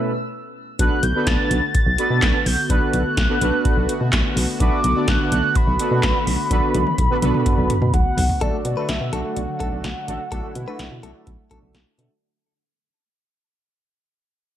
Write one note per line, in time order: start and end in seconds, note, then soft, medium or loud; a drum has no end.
0.00 0.13 B2 medium
0.00 0.13 A3 medium
0.00 0.13 C#4 medium
0.00 0.13 E4 medium
0.00 0.13 A4 medium
0.00 0.13 B4 medium
0.79 0.90 B1 loud
0.79 8.37 D3 medium
0.79 8.37 A3 medium
0.79 8.37 B3 medium
0.79 0.99 B3 medium
0.79 0.99 D4 medium
0.79 8.37 F#4 medium
0.79 0.99 F#4 medium
0.79 0.99 A4 medium
0.79 0.99 B4 medium
0.79 1.05 F#6 loud
0.79 kick loud
0.79 closed hi-hat medium
1.03 1.14 B1 loud
1.03 1.29 G6 loud
1.03 closed hi-hat medium
1.15 1.61 B3 medium
1.15 1.61 D4 medium
1.15 1.61 F#4 medium
1.15 1.61 A4 medium
1.15 1.61 B4 medium
1.27 1.37 B1 loud
1.27 1.74 A6 loud
1.27 kick loud
1.27 snare loud
1.27 closed hi-hat medium
1.51 1.61 B1 loud
1.51 closed hi-hat medium
1.75 2.48 A6 loud
1.75 kick loud
1.75 closed hi-hat medium
1.86 1.97 B1 loud
1.98 2.38 B3 medium
1.98 2.38 D4 medium
1.98 2.38 F#4 medium
1.98 2.38 A4 medium
1.98 2.38 B4 medium
1.98 closed hi-hat medium
2.10 2.21 B2 loud
2.22 2.33 B1 loud
2.22 kick loud
2.22 snare loud
2.22 clap medium
2.22 closed hi-hat medium
2.46 2.56 B1 loud
2.46 2.72 G6 loud
2.46 open hi-hat medium
2.70 2.80 B1 loud
2.70 3.02 B3 medium
2.70 3.02 D4 medium
2.70 3.03 F#4 medium
2.70 3.02 A4 medium
2.70 3.02 B4 medium
2.70 2.93 F#6 loud
2.70 kick loud
2.70 closed hi-hat medium
2.93 3.04 B1 loud
2.93 4.33 F#6 loud
2.93 closed hi-hat medium
3.17 3.28 B1 loud
3.17 kick loud
3.17 snare loud
3.17 closed hi-hat medium
3.29 3.36 B3 medium
3.29 3.36 D4 medium
3.29 3.36 F#4 medium
3.29 3.36 A4 medium
3.29 3.36 B4 medium
3.41 3.52 B1 loud
3.41 3.93 B3 medium
3.41 3.93 D4 medium
3.41 3.93 F#4 medium
3.41 3.94 A4 medium
3.41 3.93 B4 medium
3.41 closed hi-hat medium
3.65 kick loud
3.65 closed hi-hat medium
3.77 3.87 B1 loud
3.89 closed hi-hat medium
4.01 4.11 B2 medium
4.13 4.23 B1 loud
4.13 kick loud
4.13 snare loud
4.13 clap medium
4.13 closed hi-hat medium
4.36 4.47 B1 loud
4.36 open hi-hat medium
4.60 4.71 B1 loud
4.60 4.80 B3 medium
4.60 4.80 D4 medium
4.60 4.80 F#4 medium
4.60 4.80 A4 medium
4.60 4.80 B4 medium
4.60 5.10 D6 loud
4.60 kick loud
4.60 closed hi-hat medium
4.84 4.94 B1 loud
4.84 closed hi-hat medium
4.96 5.42 B3 medium
4.96 5.42 D4 medium
4.96 5.42 F#4 medium
4.96 5.42 A4 medium
4.96 5.42 D5 medium
5.08 5.18 B1 loud
5.08 5.31 F#6 loud
5.08 kick loud
5.08 snare loud
5.08 closed hi-hat medium
5.32 5.42 B1 loud
5.32 5.57 F#6 loud
5.32 closed hi-hat medium
5.55 7.93 B5 loud
5.55 kick loud
5.55 closed hi-hat medium
5.67 5.78 B1 loud
5.79 6.18 B3 medium
5.79 6.19 D4 medium
5.79 6.19 F#4 medium
5.79 6.19 A4 medium
5.79 6.19 B4 medium
5.79 closed hi-hat medium
5.91 6.02 B2 loud
6.03 6.14 B1 loud
6.03 kick loud
6.03 snare loud
6.03 clap medium
6.03 closed hi-hat medium
6.27 6.37 B1 loud
6.27 open hi-hat medium
6.51 6.61 B1 loud
6.51 6.83 B3 medium
6.51 6.83 D4 medium
6.51 6.83 F#4 medium
6.51 6.83 A4 medium
6.51 6.83 B4 loud
6.51 kick loud
6.51 closed hi-hat medium
6.51 high tom medium
6.74 6.85 B1 loud
6.74 closed hi-hat medium
6.74 high tom medium
6.87 high tom medium
6.98 7.09 B1 loud
6.98 kick loud
6.98 closed hi-hat medium
6.98 mid tom medium
7.10 7.17 B3 medium
7.10 7.17 D4 medium
7.10 7.17 F#4 medium
7.10 7.17 A4 medium
7.10 7.17 B4 loud
7.22 7.33 B1 loud
7.22 7.74 B3 medium
7.22 7.74 D4 medium
7.22 7.74 F#4 medium
7.22 7.74 A4 medium
7.22 7.74 B4 loud
7.22 closed hi-hat medium
7.22 mid tom medium
7.34 mid tom medium
7.46 kick loud
7.46 closed hi-hat medium
7.46 mid tom medium
7.58 7.68 B1 loud
7.70 closed hi-hat medium
7.70 mid tom loud
7.82 7.92 B2 loud
7.82 mid tom medium
7.94 8.04 B1 loud
7.94 8.43 F#5 loud
7.94 kick loud
7.94 closed hi-hat medium
7.94 floor tom loud
8.17 8.28 B1 loud
8.17 floor tom loud
8.17 open hi-hat medium
8.29 floor tom loud
8.41 8.52 B1 loud
8.41 8.49 D3 medium
8.41 12.18 D3 medium
8.41 12.18 F#3 medium
8.41 12.18 A3 medium
8.41 8.61 A3 medium
8.41 8.61 D4 medium
8.41 8.61 F#4 medium
8.41 10.30 F#4 medium
8.41 8.61 A4 medium
8.41 8.56 A4 medium
8.41 8.91 D5 loud
8.41 kick loud
8.41 closed hi-hat medium
8.53 8.61 A3 medium
8.65 8.75 B2 loud
8.65 8.72 D5 medium
8.65 closed hi-hat medium
8.77 8.84 D3 medium
8.77 8.97 A3 medium
8.77 8.97 D4 medium
8.77 8.97 F#4 medium
8.77 8.97 A4 medium
8.77 8.92 B4 medium
8.89 8.99 B1 loud
8.89 8.96 A3 medium
8.89 9.14 E5 loud
8.89 snare loud
8.89 closed hi-hat medium
9.01 9.11 B2 medium
9.13 9.23 B1 loud
9.13 9.20 D3 medium
9.13 9.39 A3 medium
9.13 9.39 D4 medium
9.13 9.39 F#4 medium
9.13 9.39 A4 medium
9.13 9.20 A4 medium
9.13 11.75 F#5 loud
9.13 closed hi-hat medium
9.25 9.32 A3 medium
9.36 9.47 B1 loud
9.36 9.44 D5 medium
9.36 closed hi-hat medium
9.48 9.56 D3 medium
9.60 9.71 B1 loud
9.60 9.86 A3 medium
9.60 9.68 A3 medium
9.60 9.86 D4 medium
9.60 9.86 F#4 medium
9.60 9.68 A4 medium
9.60 9.86 A4 medium
9.60 kick medium
9.60 closed hi-hat medium
9.72 9.83 B1 medium
9.72 9.80 D5 medium
9.84 9.94 B1 loud
9.84 9.91 D3 medium
9.84 snare loud
9.84 closed hi-hat medium
9.96 10.03 A3 medium
10.08 10.18 A1 medium
10.08 10.21 A3 medium
10.08 10.21 D4 medium
10.08 10.21 F#4 medium
10.08 10.21 A4 loud
10.08 10.15 D5 medium
10.08 closed hi-hat medium
10.20 10.27 D3 medium
10.32 10.42 B1 loud
10.32 10.39 A3 medium
10.32 10.51 A3 medium
10.32 10.51 D4 medium
10.32 12.20 E4 medium
10.32 10.51 F#4 medium
10.32 10.47 A4 medium
10.32 10.51 A4 loud
10.32 kick loud
10.32 closed hi-hat medium
10.44 10.51 D5 medium
10.55 10.66 B2 loud
10.55 10.63 D3 medium
10.55 closed hi-hat medium
10.67 10.87 A3 medium
10.67 10.75 A3 medium
10.67 10.87 D4 medium
10.67 10.87 F#4 medium
10.67 10.87 A4 loud
10.67 10.82 B4 medium
10.79 10.90 B1 loud
10.79 10.87 D5 medium
10.79 snare loud
10.79 closed hi-hat medium
10.91 11.02 B2 medium
10.91 10.99 D3 medium
11.03 11.13 B1 loud
11.03 11.29 A3 medium
11.03 11.11 A3 medium
11.03 11.29 D4 medium
11.03 11.29 F#4 medium
11.03 11.29 A4 medium
11.03 11.11 A4 medium
11.03 closed hi-hat medium
11.15 11.23 D5 medium
11.27 11.37 B1 medium
11.27 11.34 D3 medium
11.27 kick medium
11.27 closed hi-hat medium
11.39 11.46 A3 medium
11.51 11.61 B1 medium
11.51 11.77 A3 medium
11.51 11.77 D4 medium
11.51 11.77 F#4 medium
11.51 11.77 A4 loud
11.51 11.58 A4 medium
11.51 kick medium
11.51 closed hi-hat medium
11.63 11.73 B1 medium
11.63 11.70 D3 medium
11.74 11.85 B1 loud
11.74 snare loud
11.74 closed hi-hat medium
11.98 12.09 B2 medium
11.98 12.06 D3 medium
11.98 12.12 A3 medium
11.98 12.11 D4 medium
11.98 12.12 F#4 medium
11.98 12.11 A4 loud
11.98 closed hi-hat medium
12.10 12.18 A3 medium